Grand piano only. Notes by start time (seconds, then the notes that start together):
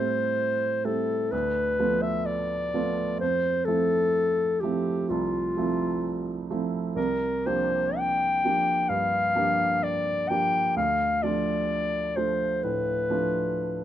Already playing: A2 G3 A3 C4 E4
0.84 G3 A3 C4 E4
1.32 D2
1.79 F3 A3 B3 F4
2.74 F3 A3 B3 F4
3.19 F2
3.68 F3 A3 C4 E4
4.63 F3 A3 C4 E4
5.10 C2
5.57 F3 A3 C4 E4
6.51 F3 A3 C4 E4
6.96 C2
7.46 F3 A#3 D4 G4
8.45 F3 A#3 D4 G4
8.89 G2
9.35 F3 A#3 D4 G4
10.30 F3 A#3 D4 G4
10.76 D2
11.23 F3 A3 D4 F4
12.16 F3 A3 D4 F4
12.64 A2
13.10 F3 A3 D4 F4